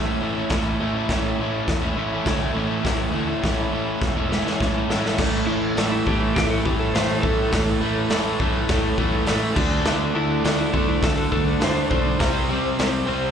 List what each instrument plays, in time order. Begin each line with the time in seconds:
Already playing: fingered electric bass A1, overdriven electric guitar A2 E3, transistor combo organ E4 A4 E5
0.06 overdriven electric guitar A3 C#4 E4
0.20 fingered electric bass A1, overdriven electric guitar E3 A3 C#4
0.24 overdriven electric guitar E4
0.35 overdriven electric guitar A3 C#4 E4
0.49 fingered electric bass A1, overdriven electric guitar A2 E3 A3 C#4 E4, transistor combo organ E4 A4 C#5, kick, snare, open hi-hat
0.79 fingered electric bass A1, overdriven electric guitar E3 A3
0.83 overdriven electric guitar C#4 E4
0.96 overdriven electric guitar A3 C#4 E4
1.09 fingered electric bass A1, overdriven electric guitar A2 E3 A3 C#4 E4, kick, snare, open hi-hat
1.39 fingered electric bass A1, overdriven electric guitar E3 A3 C#4
1.43 overdriven electric guitar E4
1.68 fingered electric bass E2, kick, snare, open hi-hat
1.81 overdriven electric guitar A3 C#4 E4
1.96 fingered electric bass A1, overdriven electric guitar E3 A3 C#4 E4
2.12 overdriven electric guitar A3 C#4 E4
2.26 fingered electric bass D2, overdriven electric guitar A2 E3 A3 C#4 E4, kick, snare, open hi-hat
2.40 overdriven electric guitar A3 C#4 E4
2.54 fingered electric bass A1, overdriven electric guitar E3 A3 C#4 E4
2.67 overdriven electric guitar C#4 E4
2.71 overdriven electric guitar A3
2.83 fingered electric bass A1, overdriven electric guitar A2 E3 A3 C#4 E4, kick, snare, open hi-hat
3.10 fingered electric bass D2, overdriven electric guitar E3 A3 C#4
3.14 overdriven electric guitar E4
3.27 overdriven electric guitar A3 C#4 E4
3.43 fingered electric bass A1, overdriven electric guitar A2 E3 A3 C#4 E4, kick, snare, open hi-hat
3.69 fingered electric bass A1, overdriven electric guitar E3 A3
3.74 overdriven electric guitar C#4 E4
4.01 fingered electric bass E1, kick, snare
4.16 overdriven electric guitar A3 C#4 E4
4.30 overdriven electric guitar E3 A3 C#4 E4, snare
4.46 overdriven electric guitar A3 C#4 E4, snare
4.60 fingered electric bass A1, overdriven electric guitar A2 E3 A3 C#4 E4, kick, snare
4.75 overdriven electric guitar A3 C#4 E4
4.88 fingered electric bass A1, overdriven electric guitar E3 A3 C#4 E4, snare
5.04 overdriven electric guitar A3 C#4 E4, snare
5.17 fingered electric bass A1, overdriven electric guitar A2 E3 A3, transistor combo organ E4 A4 C#5, kick, snare, crash
5.47 fingered electric bass A1, overdriven electric guitar A2 E3 A3, electric slide guitar E4
5.77 fingered electric bass A1, overdriven electric guitar A2 E3 A3, snare, open hi-hat
5.92 electric slide guitar E4
6.06 fingered electric bass A1, overdriven electric guitar A2 E3 A3, electric slide guitar G4, kick
6.21 electric slide guitar E4
6.35 fingered electric bass A1, overdriven electric guitar A2 E3 A3, electric slide guitar G4, kick, snare, open hi-hat
6.50 electric slide guitar A4
6.65 fingered electric bass A1, overdriven electric guitar A2 E3 A3, electric slide guitar G4, kick
6.79 electric slide guitar A4
6.92 fingered electric bass A1, overdriven electric guitar A2 E3 A3, electric slide guitar C5, snare, open hi-hat
7.22 fingered electric bass A1, overdriven electric guitar A2 E3 A3, electric slide guitar A4, kick
7.52 fingered electric bass A1, overdriven electric guitar A2 E3 A3, kick, snare, open hi-hat
7.81 fingered electric bass A1, overdriven electric guitar A2 E3 A3
8.10 fingered electric bass A1, overdriven electric guitar A2 E3 A3, snare, open hi-hat
8.40 fingered electric bass A1, overdriven electric guitar A2 E3 A3, transistor combo organ E5, kick
8.54 transistor combo organ F#5
8.69 fingered electric bass A1, overdriven electric guitar A2 E3 A3, transistor combo organ G5, kick, snare, open hi-hat
8.97 fingered electric bass A1, overdriven electric guitar A2 E3 A3, transistor combo organ A5, kick
9.26 fingered electric bass A1, overdriven electric guitar A2 E3 A3, transistor combo organ B5, snare, open hi-hat
9.52 fingered electric bass D2, overdriven electric guitar D3 A3, transistor combo organ F#4 A4 D5 A5
9.56 overdriven electric guitar D4, kick, crash
9.85 fingered electric bass D2, overdriven electric guitar D3 A3 D4, snare
10.14 fingered electric bass D2, overdriven electric guitar D3 A3 D4, electric slide guitar E4
10.44 fingered electric bass D2, overdriven electric guitar D3 A3 D4, snare, open hi-hat
10.61 electric slide guitar E4
10.73 fingered electric bass D2, overdriven electric guitar D3 A3 D4, electric slide guitar A4, kick
10.88 electric slide guitar E4
11.02 fingered electric bass D2, overdriven electric guitar D3 A3 D4, electric slide guitar A4, kick, snare, open hi-hat
11.17 electric slide guitar A4
11.32 fingered electric bass D2, overdriven electric guitar D3 A3 D4, electric slide guitar A4, kick
11.47 electric slide guitar A4
11.60 fingered electric bass D2, overdriven electric guitar D3 A3 D4, electric slide guitar C5, snare, open hi-hat
11.90 fingered electric bass B1, overdriven electric guitar D3 A3 D4, electric slide guitar C5, kick
12.19 fingered electric bass C2, overdriven electric guitar C3 G3 C4, transistor combo organ E4 G4 C5, kick, snare, open hi-hat
12.48 fingered electric bass C2, overdriven electric guitar C3 G3 C4
12.79 fingered electric bass C2, overdriven electric guitar C3 G3 C4, snare, open hi-hat
13.07 fingered electric bass C2, overdriven electric guitar C3 G3 C4